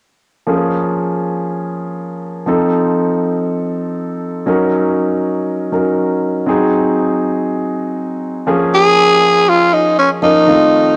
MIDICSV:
0, 0, Header, 1, 3, 480
1, 0, Start_track
1, 0, Key_signature, -5, "minor"
1, 0, Tempo, 500000
1, 455, Time_signature, 4, 2, 24, 8
1, 10526, End_track
2, 0, Start_track
2, 0, Title_t, "Tenor saxophone"
2, 0, Program_c, 0, 66
2, 8392, Note_on_c, 0, 68, 103
2, 9108, Note_on_c, 0, 65, 89
2, 9123, Note_off_c, 0, 68, 0
2, 9345, Note_on_c, 0, 63, 77
2, 9359, Note_off_c, 0, 65, 0
2, 9580, Note_off_c, 0, 63, 0
2, 9588, Note_on_c, 0, 61, 77
2, 9693, Note_off_c, 0, 61, 0
2, 9824, Note_on_c, 0, 63, 92
2, 10526, Note_off_c, 0, 63, 0
2, 10526, End_track
3, 0, Start_track
3, 0, Title_t, "Grand piano"
3, 0, Program_c, 1, 0
3, 445, Note_on_c, 1, 53, 62
3, 452, Note_on_c, 1, 58, 59
3, 461, Note_on_c, 1, 61, 57
3, 467, Note_on_c, 1, 68, 67
3, 651, Control_c, 1, 64, 127
3, 2332, Note_off_c, 1, 53, 0
3, 2335, Note_off_c, 1, 58, 0
3, 2340, Note_off_c, 1, 61, 0
3, 2343, Note_off_c, 1, 68, 0
3, 2365, Note_on_c, 1, 53, 61
3, 2373, Note_on_c, 1, 60, 58
3, 2382, Note_on_c, 1, 63, 62
3, 2387, Note_on_c, 1, 69, 69
3, 2388, Control_c, 1, 64, 0
3, 2558, Control_c, 1, 64, 127
3, 4252, Note_off_c, 1, 53, 0
3, 4256, Note_off_c, 1, 60, 0
3, 4260, Note_off_c, 1, 63, 0
3, 4263, Note_off_c, 1, 69, 0
3, 4283, Note_on_c, 1, 54, 64
3, 4291, Note_on_c, 1, 61, 60
3, 4299, Note_on_c, 1, 63, 61
3, 4305, Note_on_c, 1, 70, 69
3, 4306, Control_c, 1, 64, 0
3, 4485, Control_c, 1, 64, 127
3, 5465, Note_off_c, 1, 54, 0
3, 5469, Note_off_c, 1, 61, 0
3, 5473, Note_off_c, 1, 63, 0
3, 5476, Note_off_c, 1, 70, 0
3, 5491, Note_on_c, 1, 54, 47
3, 5493, Note_on_c, 1, 61, 44
3, 5498, Note_on_c, 1, 63, 44
3, 5501, Note_on_c, 1, 70, 55
3, 6187, Note_off_c, 1, 54, 0
3, 6201, Note_off_c, 1, 63, 0
3, 6201, Note_on_c, 1, 54, 65
3, 6207, Note_on_c, 1, 60, 61
3, 6214, Note_off_c, 1, 61, 0
3, 6215, Note_on_c, 1, 63, 61
3, 6218, Note_off_c, 1, 70, 0
3, 6226, Control_c, 1, 64, 0
3, 6226, Note_on_c, 1, 68, 74
3, 6378, Control_c, 1, 64, 127
3, 8090, Note_off_c, 1, 54, 0
3, 8093, Note_off_c, 1, 60, 0
3, 8097, Note_off_c, 1, 63, 0
3, 8102, Note_off_c, 1, 68, 0
3, 8127, Note_on_c, 1, 53, 75
3, 8130, Note_on_c, 1, 58, 69
3, 8133, Note_on_c, 1, 61, 72
3, 8139, Note_on_c, 1, 68, 85
3, 8147, Control_c, 1, 64, 0
3, 8342, Control_c, 1, 64, 127
3, 8722, Note_off_c, 1, 53, 0
3, 8724, Note_off_c, 1, 58, 0
3, 8725, Note_off_c, 1, 61, 0
3, 8729, Note_off_c, 1, 68, 0
3, 9811, Note_on_c, 1, 53, 64
3, 9814, Note_on_c, 1, 58, 61
3, 9818, Note_on_c, 1, 61, 59
3, 9821, Note_on_c, 1, 70, 69
3, 9961, Note_off_c, 1, 53, 0
3, 9962, Note_off_c, 1, 58, 0
3, 9965, Note_off_c, 1, 61, 0
3, 9966, Note_off_c, 1, 70, 0
3, 10051, Note_on_c, 1, 51, 64
3, 10055, Note_on_c, 1, 57, 60
3, 10061, Note_on_c, 1, 60, 59
3, 10065, Note_on_c, 1, 65, 70
3, 10066, Control_c, 1, 64, 0
3, 10216, Control_c, 1, 64, 127
3, 10526, Note_off_c, 1, 51, 0
3, 10526, Note_off_c, 1, 57, 0
3, 10526, Note_off_c, 1, 60, 0
3, 10526, Note_off_c, 1, 65, 0
3, 10526, End_track
0, 0, End_of_file